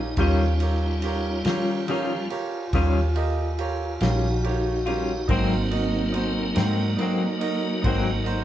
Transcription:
Already playing: fingered electric bass A#1, tonewheel organ D#4
0.17 fingered electric bass D#2, clean electric guitar D#3 G3 C#4 F4, tonewheel organ G3 F4, grand piano F4 G4 A#4 C#5, kick, ride
0.21 tonewheel organ C#4
0.60 grand piano F4 G4 A#4 C#5, ride
1.02 grand piano F4 G4 A#4 C#5, ride
1.45 fingered electric bass D#3, clean electric guitar C#4 F4, grand piano F4 G4 A#4 C#5, snare, ride
1.49 clean electric guitar G3
1.88 clean electric guitar D#3 G3 C#4 F4, tonewheel organ F3 G3 C#4, grand piano F4 G4 A#4 C#5, ride
2.30 grand piano F4 G4 A#4 C#5, ride
2.73 fingered electric bass D#2, clean electric guitar D#3 G3 C#4 F4, grand piano F4 G4 A#4 C#5, kick, snare, ride
3.15 grand piano F4 G4 A#4 D#5, ride
3.58 grand piano F4 G4 A#4 C#5, ride
4.01 fingered electric bass A#1, clean electric guitar G3 C#4 F4, grand piano F4 G4 A#4 C#5, tonewheel organ F4, snare, ride
4.05 tonewheel organ D#4 F#4
4.43 grand piano F4 G4 A#4 C#5, ride
4.49 tonewheel organ D#4 F#4
4.85 clean electric guitar G3 C#4 F4, grand piano F4 G4 A#4 C#5, ride
4.90 tonewheel organ D#4 F#4
5.28 fingered electric bass G#1, clean electric guitar G#2 F#3 A#3 C4, tonewheel organ F#3 A#3, grand piano D#4 F#4 A#4 C5, kick, ride
5.32 tonewheel organ C4 D#4
5.71 tonewheel organ C4 D#4, grand piano D#4 F#4 A#4 D#5, ride
6.12 grand piano D#4 F#4 A#4 C5, ride
6.17 tonewheel organ C4 D#4
6.55 fingered electric bass G#2, clean electric guitar A#3 C4, tonewheel organ D4, grand piano D#4 F#4 A#4 C5, snare, ride
6.59 clean electric guitar F#3, tonewheel organ D#4
6.97 clean electric guitar G#2 F#3, grand piano D#4 F#4 A#4 D#5, ride
7.01 clean electric guitar A#3 C4
7.39 grand piano D#4 F#4 A#4 D#5, ride
7.82 fingered electric bass G#1, clean electric guitar G#2, grand piano D#4 F#4 A#4 C5, kick, ride
7.86 clean electric guitar F#3 A#3 C4
8.24 grand piano D#4 F#4 A#4 C5, ride

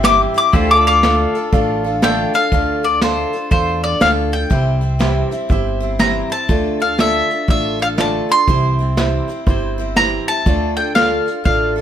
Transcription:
Already playing: upright bass G1, pedal steel guitar E4 G4 C5
0.03 steel-string acoustic guitar C3 E3 G3 C4 E4 C5, grand piano G4 C5 E5, mandolin D6, snare
0.34 steel-string acoustic guitar G3 C4 E4 C5, mandolin D6, closed hi-hat
0.53 upright bass D2, steel-string acoustic guitar D3 A3 D4 F4 A4, pedal steel guitar E4 G4 C5, grand piano A4 D5 F5, kick, closed hi-hat
0.71 pedal steel guitar F4, mandolin D6
0.79 pedal steel guitar A4 D5
0.85 steel-string acoustic guitar D4 F4 A4, mandolin F5 D6
1.03 steel-string acoustic guitar D3 A3 D4 F4 A4, grand piano A4 D5 F5, snare, closed hi-hat
1.35 steel-string acoustic guitar D4 F4 A4, closed hi-hat
1.52 upright bass A1, steel-string acoustic guitar A3 D4 F4 A4, grand piano A4 D5 F5, kick, closed hi-hat
1.84 steel-string acoustic guitar D4 F4 A4, grand piano F5
2.02 steel-string acoustic guitar D3 A3 D4 F4 A4, grand piano A4 D5 F5 A5, mandolin G5, snare, closed hi-hat
2.34 steel-string acoustic guitar D4 F4 A4, mandolin F5, closed hi-hat
2.52 upright bass D2, steel-string acoustic guitar D3 A3 D4 F4 A4, grand piano A4 D5 F5, kick, closed hi-hat
2.83 steel-string acoustic guitar D4 F4 A4, mandolin D5
3.01 steel-string acoustic guitar D3 A3 D4 F4 A4, grand piano A4 D5 F5, mandolin C5, snare, closed hi-hat
3.33 steel-string acoustic guitar D4 F4 A4, closed hi-hat
3.51 upright bass E2, steel-string acoustic guitar A3 D4 F4 A4, grand piano A4 D5 F5, mandolin C5, kick, closed hi-hat
3.83 steel-string acoustic guitar D4 F4 A4, mandolin D5
4.00 upright bass D2, steel-string acoustic guitar D3 A3 D4 F4 A4, grand piano A4 D5 F5, mandolin F5, snare, closed hi-hat
4.32 steel-string acoustic guitar D4 F4 A4, mandolin G5
4.50 upright bass C2, steel-string acoustic guitar C3 E3 G3 C4 E4 C5, grand piano G4 C5 E5, kick, closed hi-hat
4.81 steel-string acoustic guitar G3 C4 E4 C5
4.99 steel-string acoustic guitar C3 E3 G3 C4 E4 C5, grand piano G4 C5 E5, snare, closed hi-hat
5.31 steel-string acoustic guitar G3 C4 E4 C5, closed hi-hat
5.49 upright bass G1, steel-string acoustic guitar G3 C4 E4 C5, grand piano G4 C5 E5, kick, closed hi-hat
5.80 steel-string acoustic guitar G3 C4 E4 C5
5.99 steel-string acoustic guitar C3 E3 G3 C4 E4 C5, grand piano G4 C5 E5, mandolin A#5, snare, closed hi-hat
6.30 steel-string acoustic guitar G3 C4 E4 C5, mandolin A5
6.49 upright bass D2, steel-string acoustic guitar D3 A3 D4 F4 A4, grand piano F4 A4 D5, kick, closed hi-hat
6.80 steel-string acoustic guitar D4 F4 A4, mandolin F5
6.98 steel-string acoustic guitar D3 A3 D4 F4 A4, grand piano F4 A4 D5, mandolin E5, snare, closed hi-hat
7.30 steel-string acoustic guitar D4 F4 A4, closed hi-hat
7.48 upright bass A1, steel-string acoustic guitar A3 D4 F4 A4, grand piano F4 A4 D5, mandolin E5, kick, closed hi-hat
7.80 steel-string acoustic guitar D4 F4 A4, mandolin F5
7.98 steel-string acoustic guitar D3 A3 D4 F4 A4, grand piano F4 A4 D5, mandolin A5, snare, closed hi-hat
8.29 steel-string acoustic guitar D4 F4 A4, mandolin C6
8.48 upright bass C2, steel-string acoustic guitar C3 E3 G3 C4 E4 C5, grand piano E4 G4 C5, kick, closed hi-hat
8.79 steel-string acoustic guitar G3 C4 E4 C5
8.97 steel-string acoustic guitar C3 E3 G3 C4 E4 C5, grand piano E4 G4 C5, snare, closed hi-hat
9.28 steel-string acoustic guitar G3 C4 E4 C5, closed hi-hat
9.46 upright bass G1, steel-string acoustic guitar G3 C4 E4 C5, grand piano E4 G4 C5, kick, closed hi-hat
9.78 steel-string acoustic guitar G3 C4 E4 C5
9.96 steel-string acoustic guitar C3 E3 G3 C4 E4 C5, grand piano E4 G4 C5, mandolin A#5, snare
10.28 steel-string acoustic guitar G3 C4 E4 C5, mandolin A5
10.46 upright bass D2, steel-string acoustic guitar D3 A3 D4 F4 A4, grand piano F4 A4 D5, kick, closed hi-hat
10.77 steel-string acoustic guitar D4 F4 A4, mandolin G5
10.95 steel-string acoustic guitar D3 A3 D4 F4 A4, grand piano F4 A4 D5, mandolin F5, snare, closed hi-hat
11.26 steel-string acoustic guitar D4 F4 A4, closed hi-hat
11.44 upright bass A1, steel-string acoustic guitar A3 D4 F4 A4, grand piano F4 A4 D5, mandolin F5, kick, closed hi-hat
11.76 steel-string acoustic guitar F4 A4

